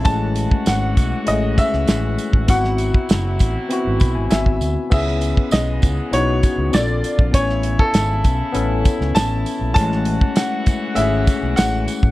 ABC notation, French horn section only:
X:1
M:4/4
L:1/8
Q:1/4=99
K:C#m
V:1 name="French horn section" clef=bass
[E,F]8 | [^B,,F,E]8 | [E,B,]6 [=D,^A,^E]2 | [C,E]8 |
[E,F]8 |]